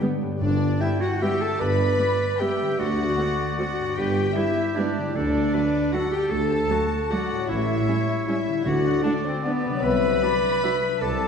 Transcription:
Already playing: G2 D3 G3 B3 D4 G4 B4
0.01 D3 G3 B3
0.21 G2 D4
0.27 B3
0.32 D4
0.36 G4
0.41 G1 G2 D4 D5
0.80 G3 B3 E4 E5 G5
1.01 F#4 F#5
1.21 G3 B3 G4 E5 G5
1.41 A4 A5
1.59 G1 G2 B4 D5 B5
1.99 G3 B3 D5
2.39 G3 B3 G4 E5 G5
2.61 D3
2.66 C4
2.70 D4
2.75 D2 F#4 A4 F#5
2.79 D2 F#4 D5 F#5
3.18 A3 C4
3.59 A3 C4 F#4 F#5
3.79 G2
3.84 B3
3.88 D4
3.93 G4
3.97 G1 G2 G4 B4 G5
4.36 G3 B3 E4 G4 E5
4.76 G3 B3 D4 D5
4.97 D3
5.02 A3
5.06 D4
5.11 D4 F#4
5.15 D2 D3 D4 A4 D5
5.53 F#3 A3 B4
5.93 F#3 A3 F#4 A4 F#5
6.11 G4 G5
6.31 D2 A4 A5
6.70 F#3 A3 F#4
7.10 F#3 A3 F#4 D5 F#5
7.31 A2
7.36 A3
7.40 C#4
7.45 A2 E4 G4 E5
7.49 A1 C#5
7.88 G3 C#4 C#5
8.27 G3 C#4 E4 E5
8.48 D3
8.52 A3
8.57 D4
8.61 F#4 A4
8.66 D2 D3 F#4 D5 F#5
9.03 A3 D4 D5
9.24 C4 C5
9.44 A3 B3 D4 B4
9.65 C3
9.70 F#3
9.75 D4
9.79 A4
9.83 C2 C3 B4 E5 B5
10.22 F#3 D4 D5
10.63 F#3 D4 E5
11.01 C2 C3 A4 D5 A5

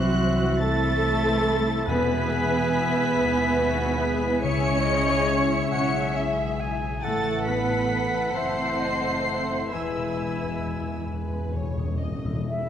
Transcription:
Already playing: C2 C3 E3 F#3 C4 E4 F#4 C5 E5 F#6
0.39 C5
0.60 A3 E4 A4 E5 A6
1.25 C5
1.68 E4
1.85 E2 B2 G#3 B3 E4 G#4 B4 E5 G#5 B6
2.10 G#3
2.31 E4
2.75 G#4
3.16 D#2 G#4
3.38 G#5
3.59 F#4
3.99 G#4
4.43 C#2 C#3 C#4 G#4 C#5 E5 C#7
4.64 C#4
4.83 G#3 D#5
5.08 E4
5.27 E5
5.51 G#4
5.70 B1 C#4 G#4 C#5 F#5 C#7
6.16 E5
6.37 G#4
6.60 G#5
6.82 E4
7.01 A1 A2 A3 E4 A4 F#5 A6
7.25 E3
7.46 A3 B3 B4 B6
7.70 E4
8.14 A4
8.33 F#1 A3 C4 E4 C5 C7
8.37 E5
8.81 D#5
9.05 A4
9.27 E5
9.51 E4
9.71 E1 E2 E3 G#3 E4 B4 E5 G#5 E6
9.80 E2
9.88 E2
9.96 E2 B2
10.04 E2
10.12 E2
10.20 E2 G#3
10.28 E2
10.35 E2
10.41 E2 E4
10.59 E2
10.64 E2 G#5
10.75 E2
10.82 E2
10.87 E2 G#4
10.98 E2
11.06 E2 B4
11.13 E2
11.22 E2
11.29 E2 B5
11.38 E2
11.46 E2
11.53 E2 C#5
11.61 E2
11.69 E2
11.77 E2 G#4
11.85 E2
11.94 E2
12.00 E2 D#5
12.09 E2
12.16 E2
12.25 E2 E4
12.33 E2
12.44 E2 G#3 E4 G#4
12.48 E4 E5

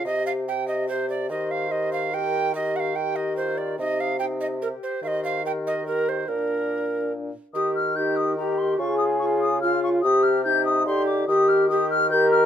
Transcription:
0.05 C3 G4 D#5
0.27 F5
0.48 G4 G5
0.68 D#5
0.89 G4 C5
1.10 D5
1.29 D#3 G4 C5 D#5
1.51 F5
1.70 G4 D#5
1.93 F5
2.13 G4 A#4 G5
2.55 G4 D#5
2.76 F5 F#5
2.96 G4 G5
3.16 D#5
3.37 F4 C5
3.58 D5
3.79 C3 D#4 G4 D#5
4.00 F5
4.19 D#4 G4 G5
4.41 D#5
4.62 G4 A#4
4.83 C5
5.03 D#3 G4 C5 F5
5.08 D#5
5.25 F5
5.45 G4 A#4 G5
5.67 D#5
5.86 G4 A#4
6.09 C5
6.28 A#2 D4 A#4
7.54 D#3 G4 D#6
7.75 F6
7.95 D#4 G4 G6
8.16 D#6
8.36 G4 A#5
8.58 C6
8.78 C#3 F4 G#4 C#6
8.98 D#6
9.19 F4 C#6
9.41 D#6
9.61 F4 F6
9.83 C#6
10.02 C3 G4 D#6
10.23 F6
10.44 D#4 G4 G6
10.65 D#6
10.87 D3 G4 C6
11.06 D6
11.28 D#3 G4 D#6
11.48 F6
11.69 G4 D#6
11.90 F6
12.10 G4 A#4 G6
12.31 F6

